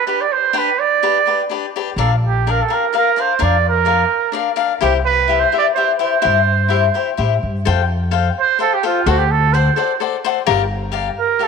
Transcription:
0.07 D4 G4 B4 D5
0.21 D5
0.32 C5
0.53 D4 G4 B4 D5
0.58 B4
0.80 D5
1.03 D4 G4 B4 D5
1.26 D4 G4 B4 D5
1.50 D4 G4 B4 D5
1.76 D4 G4 B4 D5
1.96 A#1 D4 A4 A#4 D5 F5
2.27 G4
2.47 D4 A#4 D5 F5
2.62 A4
2.68 D4 A#4 D5 F5
2.74 A#4
2.93 D4 A#4 D5 F5
2.97 A#4
3.16 D4 A#4 D5 F5
3.20 C5
3.39 F2 D4 A#4 D5 F5
3.69 A#4
3.85 D4 A#4 D5 F5
4.32 D4 A#4 D5 F5
4.56 D4 A#4 D5 F5
4.81 C2 E4 G4 C5 E5
5.05 B4
5.28 E4 G4 C5 E5
5.40 C5
5.52 E4 G4 C5 E5
5.58 D5
5.75 E4 G4 C5 E5
5.98 E4 G4 C5 E5
6.22 G2 E4 G4 C5 E5
6.68 E4 G4 C5 E5
6.94 E4 G4 C5 E5
7.17 A2 E4 G4 C5 E5
7.43 G2
7.65 F2 A4 C5 F5 G5
8.11 A4 C5 F5 G5
8.40 C5
8.59 A4 C5 F5 G5
8.74 G4
8.83 F4 A4 C5 F5 G5
9.06 D2 F#4 A4 C5 D5 F#5
9.18 G4
9.31 A4
9.53 A4 C5 D5 F#5
9.76 A4 C5 D5 F#5
10.00 A4 C5 D5 F#5
10.24 A4 C5 D5 F#5
10.46 G1 G4 A#4 D5 F5
10.92 G4 A#4 D5 F5
11.19 A#4
11.39 G4 A4 A#4 D5 F5

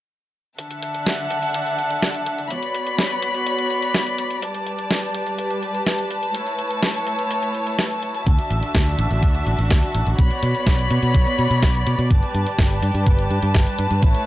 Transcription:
0.58 D3 D4 E5 F#5 A5, closed hi-hat
0.71 closed hi-hat
0.82 closed hi-hat
0.95 closed hi-hat
1.06 snare, closed hi-hat
1.19 closed hi-hat
1.30 closed hi-hat
1.43 closed hi-hat
1.54 closed hi-hat
1.67 closed hi-hat
1.79 closed hi-hat
1.90 closed hi-hat
2.02 snare, closed hi-hat
2.14 closed hi-hat
2.26 closed hi-hat
2.38 closed hi-hat
2.50 B3 F#4 C#5 D5 B5, closed hi-hat
2.63 closed hi-hat
2.75 closed hi-hat
2.87 closed hi-hat
2.98 snare, closed hi-hat
3.11 closed hi-hat
3.23 closed hi-hat
3.35 closed hi-hat
3.47 closed hi-hat
3.59 closed hi-hat
3.71 closed hi-hat
3.83 closed hi-hat
3.95 snare, closed hi-hat
4.06 closed hi-hat
4.19 closed hi-hat
4.31 closed hi-hat
4.43 G3 G4 B4 A5, closed hi-hat
4.55 closed hi-hat
4.67 closed hi-hat
4.79 closed hi-hat
4.91 snare, closed hi-hat
5.03 closed hi-hat
5.15 closed hi-hat
5.27 closed hi-hat
5.39 closed hi-hat
5.50 closed hi-hat
5.63 closed hi-hat
5.75 closed hi-hat
5.87 snare, closed hi-hat
5.99 closed hi-hat
6.11 closed hi-hat
6.23 closed hi-hat
6.34 A3 E4 C#5, closed hi-hat
6.47 closed hi-hat
6.59 closed hi-hat
6.71 closed hi-hat
6.83 snare, closed hi-hat
6.95 closed hi-hat
7.07 closed hi-hat
7.19 closed hi-hat
7.31 closed hi-hat
7.43 closed hi-hat
7.55 closed hi-hat
7.67 closed hi-hat
7.79 snare, closed hi-hat
7.91 closed hi-hat
8.03 closed hi-hat
8.15 closed hi-hat
8.27 D2 D3 D4 F#4 E5, kick, closed hi-hat
8.39 closed hi-hat
8.50 A1, closed hi-hat
8.63 closed hi-hat
8.75 D2, kick, snare, closed hi-hat
8.87 closed hi-hat
8.98 A1, closed hi-hat
9.11 A1, closed hi-hat
9.23 D2, kick, closed hi-hat
9.35 closed hi-hat
9.46 A1, closed hi-hat
9.58 A1, closed hi-hat
9.70 D2, kick, snare, closed hi-hat
9.83 closed hi-hat
9.95 A1, closed hi-hat
10.07 A1, closed hi-hat
10.18 B1 B3 C#5 D5 B5, kick, closed hi-hat
10.31 closed hi-hat
10.43 B2, closed hi-hat
10.55 closed hi-hat
10.67 B1, kick, snare, closed hi-hat
10.79 closed hi-hat
10.90 B2, closed hi-hat
11.03 B2, closed hi-hat
11.14 B1, kick, closed hi-hat
11.27 closed hi-hat
11.39 B2, closed hi-hat
11.51 B2, closed hi-hat
11.63 B1, kick, snare, closed hi-hat
11.75 closed hi-hat
11.87 B2, closed hi-hat
11.98 B2, closed hi-hat
12.10 G1 G3 G4 B4 A5, kick, closed hi-hat
12.23 closed hi-hat
12.34 G2, closed hi-hat
12.47 closed hi-hat
12.59 G1, kick, snare, closed hi-hat
12.71 closed hi-hat
12.82 G2, closed hi-hat
12.94 G2, closed hi-hat
13.06 G1, kick, closed hi-hat
13.19 closed hi-hat
13.30 G2, closed hi-hat
13.42 G2, closed hi-hat
13.54 G1, kick, snare, closed hi-hat
13.66 closed hi-hat
13.79 G2, closed hi-hat
13.91 G2, closed hi-hat
14.02 A1 A3 E4 C#5, kick, closed hi-hat
14.15 closed hi-hat

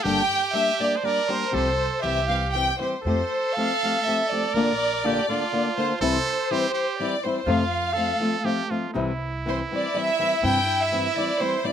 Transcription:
0.03 G1 G2 D3 G3 A#3 D4 G4 G5
0.53 G3 A#3 D4 G4 E5
0.80 G3 A#3 D4 G4 D5
0.97 C5
1.03 G3 A#3 D4 G4 A#4 D5
1.29 G3 A#3 D4 G4 C5
1.51 C2 C3 F3 G3 C4 G4 A4
2.02 C2 E3 G3 C4 G4 E5
2.28 E3 G3 C4 G4 F5
2.51 E3 G3 C4 G5
2.56 G4
2.79 E3 G3 C4 G4 C5
3.02 F2 A4 C5
3.07 F3 A3 C4 G4
3.52 F5
3.57 F3 A3 C4 G4
3.83 F3 A3 C4 G4
4.03 F3 E5
4.07 A3 C4 G4
4.30 F3 A3 C4 G4 D5
4.54 A#1 A#2 D3 A#3 D4 F4 A#4
5.04 D3 A#3 D4 F4 G4
5.28 D3 A#3 D4 F4
5.52 D3 A#3 D4 F4
5.77 D3 A#3 D4 F4 C5
5.99 C2 C3 E3 G3 C4 E4 A4 C5
6.51 E3 G3 C4 E4 G4
6.74 G4
6.99 E3 G3 C4 E4 D5
7.24 E3 G3 C4 E4 C5
7.46 F2 C3 F3 A3 C4 F4 F5
7.93 F3 A4
7.97 A3 C4 F4
8.20 F3 A3 C4 F4
8.44 F3 A3 C4 F4 G4
8.71 F3 A3 C4 F4
8.94 C2 C3 E3 G3 C4 E4
9.46 E3 G3 C4 E4 C5
9.71 E3 G3 C4 E4 D5
9.94 E3 G3 C4 E4 E5
10.19 E3 G3 C4 E4
10.43 G2 C3 E3 G3 C4 E4 G5
10.81 E5
10.92 E3 G3 C4 E4
11.16 E3 G3 C4 E4 D5
11.39 E3 G3 C4 E4 C5
11.64 E3 G3 C4 E4 D5

